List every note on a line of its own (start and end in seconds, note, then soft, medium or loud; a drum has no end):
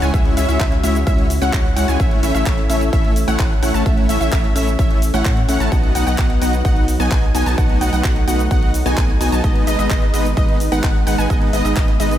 0.00 0.11 C#2 loud
0.00 1.96 C#3 medium
0.00 0.11 G#3 medium
0.00 5.68 C#4 medium
0.00 0.11 C#4 medium
0.00 5.68 E4 medium
0.00 0.11 E4 medium
0.00 0.12 G#4 medium
0.00 0.11 C#5 medium
0.00 0.11 G#5 medium
0.00 closed hi-hat medium
0.00 sub drop medium
0.00 shaker soft
0.14 0.35 C#2 loud
0.14 0.34 E4 medium
0.14 1.98 F#4 medium
0.14 0.34 C#5 medium
0.14 0.34 E5 medium
0.14 0.34 E5 loud
0.14 kick loud
0.14 closed hi-hat medium
0.14 shaker soft
0.25 closed hi-hat soft
0.37 0.46 C#2 loud
0.37 0.46 G#3 medium
0.37 0.46 C#4 medium
0.37 0.46 E4 medium
0.37 0.46 C#5 medium
0.37 0.46 E5 loud
0.37 open hi-hat loud
0.37 shaker medium
0.49 0.58 C#2 loud
0.49 0.59 G#3 medium
0.49 0.59 C#4 medium
0.49 0.59 E4 medium
0.49 0.59 C#5 medium
0.49 0.58 E5 medium
0.49 0.59 E5 medium
0.49 closed hi-hat medium
0.49 shaker soft
0.60 0.81 C#2 medium
0.60 0.74 E5 loud
0.60 kick loud
0.60 clap loud
0.60 closed hi-hat medium
0.60 shaker soft
0.72 closed hi-hat soft
0.83 1.04 C#2 medium
0.83 0.97 G#3 medium
0.83 0.97 C#4 medium
0.83 0.97 E4 medium
0.83 0.97 C#5 medium
0.83 0.97 E5 loud
0.83 open hi-hat medium
0.83 shaker medium
0.95 closed hi-hat medium
0.95 shaker soft
1.07 1.39 C#2 medium
1.07 1.27 G#3 loud
1.07 1.27 C#4 medium
1.07 1.27 E4 medium
1.07 1.27 C#5 medium
1.07 1.26 E5 loud
1.07 1.27 E5 loud
1.07 kick loud
1.07 closed hi-hat medium
1.07 shaker soft
1.18 closed hi-hat soft
1.30 open hi-hat loud
1.30 shaker medium
1.42 1.51 C#2 medium
1.42 1.52 G#3 medium
1.42 1.52 C#4 medium
1.42 1.52 E4 medium
1.42 1.52 C#5 medium
1.42 1.51 F#5 loud
1.42 1.52 F#5 loud
1.42 closed hi-hat medium
1.42 shaker soft
1.53 1.74 C#2 medium
1.53 1.67 G#3 medium
1.53 1.67 F#5 loud
1.53 kick loud
1.53 clap loud
1.53 closed hi-hat medium
1.53 shaker soft
1.76 1.86 C#2 loud
1.76 1.86 G#3 medium
1.76 1.86 C#4 medium
1.76 1.86 E4 medium
1.76 1.86 C#5 medium
1.76 1.86 F#5 loud
1.76 open hi-hat loud
1.76 shaker medium
1.88 1.98 C#2 medium
1.88 1.97 G#3 medium
1.88 1.97 C#4 medium
1.88 1.97 E4 medium
1.88 1.97 C#5 medium
1.88 1.97 G#5 medium
1.88 closed hi-hat medium
1.88 shaker soft
2.00 2.21 A1 loud
2.00 5.68 A3 medium
2.00 2.20 A3 medium
2.00 2.20 E4 medium
2.00 2.20 C#5 medium
2.00 2.20 E5 loud
2.00 kick loud
2.00 closed hi-hat medium
2.00 shaker soft
2.11 closed hi-hat soft
2.23 2.32 A1 loud
2.23 2.32 A3 loud
2.23 2.32 C#4 medium
2.23 2.32 E4 medium
2.23 2.32 C#5 medium
2.23 2.32 E5 loud
2.23 open hi-hat loud
2.23 shaker medium
2.35 2.44 A1 loud
2.35 2.45 A3 medium
2.35 2.45 C#4 medium
2.35 2.45 E4 medium
2.35 2.45 C#5 medium
2.35 2.45 E5 medium
2.35 closed hi-hat medium
2.35 shaker soft
2.46 2.67 A1 medium
2.46 2.60 A3 medium
2.46 2.60 C#4 medium
2.46 2.60 E4 medium
2.46 2.60 C#5 medium
2.46 2.60 E5 loud
2.46 kick loud
2.46 clap loud
2.46 closed hi-hat medium
2.46 shaker soft
2.58 closed hi-hat soft
2.69 2.91 A1 medium
2.69 2.83 A3 medium
2.69 2.83 C#4 medium
2.69 2.83 E4 medium
2.69 2.83 C#5 medium
2.69 2.83 E5 medium
2.69 open hi-hat loud
2.69 shaker medium
2.81 closed hi-hat medium
2.81 shaker soft
2.93 3.25 A1 loud
2.93 3.13 A3 loud
2.93 3.13 C#4 medium
2.93 3.13 E4 medium
2.93 3.13 C#5 medium
2.93 3.13 E5 loud
2.93 kick loud
2.93 closed hi-hat medium
2.93 shaker soft
3.05 closed hi-hat soft
3.16 open hi-hat loud
3.16 shaker medium
3.28 3.37 A1 medium
3.28 3.38 A3 loud
3.28 3.38 C#4 medium
3.28 3.38 E4 medium
3.28 3.38 C#5 medium
3.28 3.38 F#5 loud
3.28 closed hi-hat medium
3.28 shaker soft
3.39 3.60 A1 loud
3.39 3.53 C#4 medium
3.39 3.53 E4 medium
3.39 3.53 C#5 medium
3.39 3.53 F#5 loud
3.39 kick loud
3.39 clap loud
3.39 closed hi-hat medium
3.39 shaker soft
3.63 3.72 A1 loud
3.63 3.72 A3 medium
3.63 3.72 C#4 medium
3.63 3.72 E4 medium
3.63 3.72 C#5 medium
3.63 3.72 F#5 loud
3.63 open hi-hat loud
3.63 shaker medium
3.74 3.84 A1 loud
3.74 3.83 A3 medium
3.74 3.83 C#4 medium
3.74 3.83 E4 medium
3.74 3.83 C#5 medium
3.74 3.83 A5 medium
3.74 closed hi-hat soft
3.74 shaker soft
3.86 4.07 A1 loud
3.86 4.06 A3 medium
3.86 4.06 E4 medium
3.86 4.06 E5 loud
3.86 4.06 E5 medium
3.86 kick loud
3.86 closed hi-hat medium
3.86 shaker soft
3.98 closed hi-hat soft
4.09 4.18 A1 loud
4.09 4.18 A3 loud
4.09 4.18 C#4 medium
4.09 4.18 E4 medium
4.09 4.18 C#5 medium
4.09 4.18 E5 loud
4.09 open hi-hat loud
4.09 shaker medium
4.21 4.30 A1 loud
4.21 4.31 A3 medium
4.21 4.31 C#4 medium
4.21 4.31 E4 medium
4.21 4.31 C#5 medium
4.21 4.31 E5 medium
4.21 4.31 E5 loud
4.21 closed hi-hat soft
4.21 shaker soft
4.32 4.53 A1 loud
4.32 4.46 A3 medium
4.32 4.46 C#4 medium
4.32 4.46 E4 medium
4.32 4.46 E5 loud
4.32 kick loud
4.32 clap loud
4.32 closed hi-hat medium
4.32 shaker soft
4.44 closed hi-hat soft
4.56 4.77 A1 medium
4.56 4.69 A3 medium
4.56 4.69 C#4 medium
4.56 4.69 E4 medium
4.56 4.69 C#5 medium
4.56 4.69 E5 loud
4.56 4.69 E5 medium
4.56 open hi-hat loud
4.56 shaker medium
4.67 closed hi-hat soft
4.67 shaker soft
4.79 5.11 A1 loud
4.79 4.99 A3 loud
4.79 4.99 C#4 medium
4.79 4.99 E4 medium
4.79 4.99 C#5 medium
4.79 4.99 E5 loud
4.79 kick loud
4.79 closed hi-hat medium
4.79 shaker soft
4.91 closed hi-hat soft
5.02 open hi-hat loud
5.02 shaker medium
5.14 5.23 A1 medium
5.14 5.24 A3 loud
5.14 5.24 C#4 medium
5.14 5.24 E4 medium
5.14 5.24 C#5 medium
5.14 5.24 F#5 loud
5.14 closed hi-hat soft
5.14 shaker soft
5.25 5.46 A2 medium
5.25 5.39 A3 medium
5.25 5.39 C#4 medium
5.25 5.39 E4 medium
5.25 5.39 C#5 medium
5.25 5.39 F#5 loud
5.25 kick loud
5.25 clap loud
5.25 closed hi-hat medium
5.25 shaker soft
5.37 closed hi-hat soft
5.49 5.58 A1 loud
5.49 5.59 A3 medium
5.49 5.59 C#4 medium
5.49 5.59 E4 medium
5.49 5.59 C#5 medium
5.49 5.58 F#5 loud
5.49 5.59 F#5 loud
5.49 open hi-hat loud
5.49 shaker medium
5.60 5.70 A1 loud
5.60 5.69 A3 medium
5.60 5.69 C#4 medium
5.60 5.69 E4 medium
5.60 5.69 C#5 medium
5.60 5.69 A5 medium
5.60 closed hi-hat soft
5.60 shaker soft
5.72 5.93 B1 loud
5.72 9.40 F#3 medium
5.72 7.56 B3 medium
5.72 12.18 D#4 medium
5.72 5.92 D#4 medium
5.72 5.92 F#4 medium
5.72 5.92 D#5 medium
5.72 5.92 F#5 loud
5.72 5.92 F#5 medium
5.72 kick loud
5.72 closed hi-hat medium
5.72 shaker soft
5.84 closed hi-hat soft
5.95 6.04 B1 medium
5.95 6.04 B3 loud
5.95 6.04 D#4 medium
5.95 6.04 F#4 medium
5.95 6.04 D#5 medium
5.95 6.04 F#5 loud
5.95 open hi-hat loud
5.95 shaker medium
6.07 6.16 B1 loud
6.07 6.17 B3 medium
6.07 6.17 D#4 medium
6.07 6.17 F#4 medium
6.07 6.17 D#5 medium
6.07 6.17 F#5 medium
6.07 closed hi-hat medium
6.07 shaker soft
6.18 6.39 B1 loud
6.18 6.32 D#4 medium
6.18 6.32 F#4 medium
6.18 6.32 D#5 medium
6.18 6.32 F#5 loud
6.18 kick loud
6.18 clap loud
6.18 closed hi-hat medium
6.18 shaker soft
6.30 closed hi-hat soft
6.42 6.63 B1 medium
6.42 6.55 B3 medium
6.42 6.55 D#4 medium
6.42 6.55 F#4 medium
6.42 6.55 D#5 medium
6.42 6.55 F#5 loud
6.42 6.55 F#5 medium
6.42 open hi-hat medium
6.42 shaker medium
6.53 closed hi-hat soft
6.53 shaker soft
6.65 6.97 B1 loud
6.65 6.85 B3 loud
6.65 6.85 D#4 medium
6.65 6.85 F#4 medium
6.65 6.85 D#5 medium
6.65 6.85 F#5 loud
6.65 kick loud
6.65 closed hi-hat medium
6.65 shaker soft
6.76 closed hi-hat soft
6.88 open hi-hat loud
6.88 shaker medium
7.00 7.09 B1 loud
7.00 7.10 B3 loud
7.00 7.10 D#4 medium
7.00 7.10 F#4 medium
7.00 7.10 D#5 medium
7.00 7.10 G#5 loud
7.00 closed hi-hat soft
7.00 shaker soft
7.11 7.32 B1 loud
7.11 7.25 B3 medium
7.11 7.25 D#4 medium
7.11 7.25 F#4 medium
7.11 7.25 D#5 medium
7.11 7.25 G#5 loud
7.11 kick loud
7.11 clap loud
7.11 closed hi-hat medium
7.11 shaker soft
7.35 7.44 B1 loud
7.35 7.45 B3 medium
7.35 7.45 D#4 medium
7.35 7.45 F#4 medium
7.35 7.45 D#5 medium
7.35 7.45 G#5 loud
7.35 open hi-hat medium
7.35 shaker medium
7.46 7.56 B1 loud
7.46 7.55 B3 medium
7.46 7.55 D#4 medium
7.46 7.55 F#4 medium
7.46 7.55 D#5 medium
7.46 7.55 A5 medium
7.46 closed hi-hat medium
7.46 shaker soft
7.58 7.79 B1 loud
7.58 9.42 A3 medium
7.58 7.78 B3 medium
7.58 7.78 D#4 medium
7.58 7.78 F#4 medium
7.58 7.78 D#5 medium
7.58 7.78 F#5 loud
7.58 7.78 F#5 medium
7.58 kick loud
7.58 closed hi-hat medium
7.58 shaker soft
7.70 closed hi-hat soft
7.81 7.90 B1 loud
7.81 7.90 B3 medium
7.81 7.90 D#4 medium
7.81 7.90 F#4 medium
7.81 7.90 D#5 medium
7.81 7.90 F#5 loud
7.81 open hi-hat loud
7.81 shaker medium
7.93 8.02 B1 loud
7.93 8.03 B3 medium
7.93 8.03 D#4 medium
7.93 8.03 F#4 medium
7.93 8.03 D#5 medium
7.93 8.03 F#5 medium
7.93 closed hi-hat medium
7.93 shaker soft
8.04 8.25 B1 loud
8.04 8.18 B3 medium
8.04 8.18 D#4 medium
8.04 8.18 F#4 medium
8.04 8.18 D#5 medium
8.04 8.18 F#5 loud
8.04 kick loud
8.04 clap loud
8.04 closed hi-hat medium
8.04 shaker soft
8.16 closed hi-hat soft
8.28 8.49 B1 medium
8.28 8.41 B3 medium
8.28 8.41 D#4 medium
8.28 8.41 F#4 medium
8.28 8.41 D#5 medium
8.28 8.41 F#5 loud
8.28 8.41 F#5 medium
8.28 open hi-hat medium
8.28 shaker medium
8.39 closed hi-hat medium
8.39 shaker soft
8.51 8.84 B1 medium
8.51 8.71 B3 loud
8.51 8.71 D#4 medium
8.51 8.71 F#4 medium
8.51 8.71 D#5 medium
8.51 8.71 F#5 loud
8.51 kick loud
8.51 closed hi-hat medium
8.51 shaker soft
8.63 closed hi-hat soft
8.74 open hi-hat loud
8.74 shaker medium
8.86 8.95 B1 medium
8.86 8.96 B3 loud
8.86 8.96 D#4 medium
8.86 8.96 F#4 medium
8.86 8.96 D#5 medium
8.86 8.96 G#5 loud
8.86 closed hi-hat medium
8.86 shaker soft
8.97 9.18 B1 medium
8.97 9.11 B3 loud
8.97 9.11 D#4 medium
8.97 9.11 F#4 medium
8.97 9.11 D#5 medium
8.97 9.11 G#5 loud
8.97 kick loud
8.97 clap loud
8.97 closed hi-hat medium
8.97 shaker soft
9.21 9.30 B1 loud
9.21 9.31 B3 medium
9.21 9.31 D#4 medium
9.21 9.31 F#4 medium
9.21 9.31 D#5 medium
9.21 9.31 G#5 loud
9.21 open hi-hat medium
9.21 shaker medium
9.32 9.42 B1 loud
9.32 9.41 B3 medium
9.32 9.41 D#4 medium
9.32 9.41 F#4 medium
9.32 9.41 D#5 medium
9.32 9.41 A5 medium
9.32 closed hi-hat medium
9.32 shaker soft
9.44 9.65 G#1 loud
9.44 12.18 G#3 medium
9.44 9.64 G#3 medium
9.44 12.18 B3 medium
9.44 9.64 B3 medium
9.44 9.64 D#4 medium
9.44 9.64 B4 medium
9.44 9.64 D#5 loud
9.44 kick loud
9.44 closed hi-hat medium
9.44 shaker soft
9.56 closed hi-hat soft
9.67 9.77 G#1 loud
9.67 9.76 G#3 medium
9.67 9.76 B3 medium
9.67 9.76 D#4 medium
9.67 9.76 B4 medium
9.67 9.76 D#5 loud
9.67 open hi-hat loud
9.67 shaker medium
9.79 9.88 G#1 loud
9.79 9.89 G#3 medium
9.79 9.89 B3 medium
9.79 9.89 D#4 medium
9.79 9.89 B4 medium
9.79 9.89 D#5 medium
9.79 closed hi-hat medium
9.79 shaker soft
9.90 10.11 G#1 loud
9.90 10.04 G#3 medium
9.90 10.04 B3 medium
9.90 10.04 D#4 medium
9.90 10.04 B4 medium
9.90 10.04 D#5 loud
9.90 kick loud
9.90 clap loud
9.90 closed hi-hat medium
9.90 shaker soft
10.02 closed hi-hat soft
10.14 10.35 G#1 medium
10.14 10.27 G#3 medium
10.14 10.27 B3 medium
10.14 10.27 D#4 medium
10.14 10.27 B4 medium
10.14 10.27 D#5 medium
10.14 open hi-hat medium
10.14 shaker medium
10.25 closed hi-hat medium
10.25 shaker soft
10.37 10.70 G#1 medium
10.37 10.57 G#3 loud
10.37 10.57 B3 medium
10.37 10.57 D#4 medium
10.37 10.57 B4 medium
10.37 10.57 D#5 loud
10.37 kick loud
10.37 closed hi-hat medium
10.37 shaker soft
10.49 closed hi-hat soft
10.60 open hi-hat loud
10.60 shaker medium
10.72 10.81 G#1 medium
10.72 10.82 G#3 loud
10.72 10.82 B3 medium
10.72 10.82 D#4 medium
10.72 10.82 B4 medium
10.72 10.82 F#5 loud
10.72 closed hi-hat medium
10.72 shaker soft
10.83 11.04 G#1 loud
10.83 10.97 G#3 medium
10.83 10.97 F#5 loud
10.83 kick loud
10.83 clap loud
10.83 closed hi-hat medium
10.83 shaker soft
11.07 11.16 G#1 loud
11.07 11.17 G#3 medium
11.07 11.17 B3 medium
11.07 11.17 D#4 medium
11.07 11.17 B4 medium
11.07 11.17 F#5 loud
11.07 open hi-hat medium
11.07 shaker medium
11.18 11.28 G#1 loud
11.18 11.27 G#3 medium
11.18 11.27 B3 medium
11.18 11.27 D#4 medium
11.18 11.27 B4 medium
11.18 11.27 G#5 medium
11.18 closed hi-hat medium
11.18 shaker soft
11.30 11.51 G#1 medium
11.30 11.51 G#3 medium
11.30 11.51 B3 medium
11.30 11.51 D#4 medium
11.30 11.51 B4 medium
11.30 11.50 D#5 loud
11.30 11.51 D#5 loud
11.30 kick loud
11.30 closed hi-hat medium
11.30 shaker soft
11.42 closed hi-hat soft
11.53 11.63 G#1 loud
11.53 11.62 G#3 loud
11.53 11.62 B3 medium
11.53 11.62 D#4 medium
11.53 11.62 B4 medium
11.53 11.62 D#5 loud
11.53 open hi-hat loud
11.53 shaker medium
11.65 11.74 G#1 loud
11.65 11.75 G#3 medium
11.65 11.75 B3 medium
11.65 11.75 D#4 medium
11.65 11.75 B4 medium
11.65 11.75 D#5 medium
11.65 closed hi-hat medium
11.65 shaker soft
11.76 11.98 G#1 loud
11.76 11.90 G#3 medium
11.76 11.90 B3 medium
11.76 11.90 D#4 medium
11.76 11.90 B4 medium
11.76 11.90 D#5 loud
11.76 kick loud
11.76 clap loud
11.76 closed hi-hat medium
11.76 shaker soft
11.88 closed hi-hat soft
12.00 12.18 G#1 medium
12.00 12.13 G#3 medium
12.00 12.13 B3 medium
12.00 12.13 D#4 medium
12.00 12.13 B4 medium
12.00 12.13 D#5 medium
12.00 open hi-hat medium
12.00 shaker medium
12.11 closed hi-hat medium
12.11 shaker soft